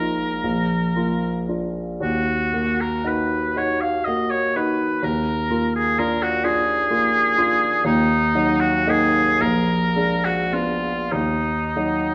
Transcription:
0.00 0.40 A#1 soft
0.00 0.47 A#3 soft
0.00 0.40 D#4 soft
0.00 0.47 F4 soft
0.00 1.49 A#4 medium
0.44 1.96 A#1 soft
0.96 1.44 A#3 soft
0.96 1.44 F4 soft
1.48 1.97 D4 soft
1.48 1.97 F4 soft
2.01 4.98 D#2 soft
2.01 2.82 F#4 medium
2.53 3.01 A#3 soft
2.53 3.01 F#4 soft
2.81 3.08 A#4 medium
3.04 3.51 D#4 soft
3.04 3.52 F#4 soft
3.04 3.59 B4 medium
3.56 4.02 D#4 soft
3.56 4.02 F#4 soft
3.56 3.83 C#5 medium
3.81 4.06 F5 medium
4.05 4.51 A#3 soft
4.05 4.51 F#4 soft
4.05 4.32 D#5 medium
4.30 4.57 C#5 medium
4.56 4.99 D#4 soft
4.56 4.99 F#4 soft
4.56 5.05 B4 medium
5.03 7.81 D#2 soft
5.03 5.74 A#4 medium
5.51 5.94 A#3 soft
5.51 5.94 F4 soft
5.76 6.01 G#4 medium
5.98 6.40 D4 soft
5.98 6.40 F4 soft
5.98 6.24 A#4 medium
6.23 6.46 F#4 medium
6.44 6.85 D4 soft
6.44 6.86 F4 soft
6.44 7.85 G#4 medium
6.90 7.33 A#3 soft
6.90 7.33 F4 soft
7.37 7.81 D4 soft
7.37 7.82 F4 soft
7.84 9.36 D#2 medium
7.84 8.62 D#4 medium
8.35 8.83 F#3 soft
8.35 8.83 D#4 soft
8.60 8.91 F#4 medium
8.87 9.37 A#3 soft
8.87 9.37 D#4 soft
8.87 9.43 G#4 medium
9.40 11.08 A#1 soft
9.40 10.26 A#4 medium
9.95 10.49 G#3 soft
9.95 10.49 D4 soft
10.25 10.55 F#4 medium
10.52 11.08 B3 soft
10.52 11.09 D4 soft
10.52 11.14 F4 soft
11.12 12.14 D#2 soft
11.12 12.14 D#4 soft
11.76 12.14 F#3 soft
11.76 12.14 D#4 soft

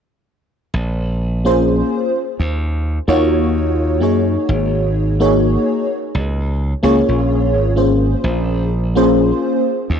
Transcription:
0.74 1.81 A#1 medium
1.45 2.11 A#3 medium
1.45 2.12 C#4 medium
1.45 2.12 F4 medium
1.45 2.12 G#4 medium
1.45 2.12 C5 loud
2.40 2.98 D#2 medium
3.07 4.02 D#2 medium
3.07 3.96 A#3 medium
3.07 3.97 D#4 medium
3.07 3.97 F4 medium
3.07 3.97 F#4 medium
3.07 3.97 C#5 loud
4.00 4.36 F#2 medium
4.00 5.14 A#3 medium
4.00 5.15 D#4 medium
4.00 5.15 F#4 medium
4.00 5.15 G#4 medium
4.00 5.16 C#5 medium
4.49 5.56 G#1 loud
5.20 5.86 A#3 loud
5.20 5.87 D#4 medium
5.20 5.87 F#4 medium
5.20 5.87 G#4 medium
5.20 5.87 C#5 loud
6.15 6.73 C#2 medium
6.83 7.01 C#2 medium
6.83 7.72 A#3 loud
6.83 7.72 C#4 medium
6.83 7.72 F4 medium
6.83 7.72 G#4 medium
6.83 7.72 C#5 loud
7.08 7.55 A#1 medium
7.55 8.14 G#1 medium
7.76 8.70 A#3 medium
7.76 8.71 C#4 medium
7.76 8.71 F4 medium
7.76 8.71 G#4 medium
7.76 8.71 C5 medium
8.24 9.31 A#1 loud
8.95 9.62 A#3 loud
8.95 9.62 C#4 medium
8.95 9.62 F4 medium
8.95 9.62 G#4 medium
8.95 9.62 C5 loud
9.90 10.00 D#2 medium

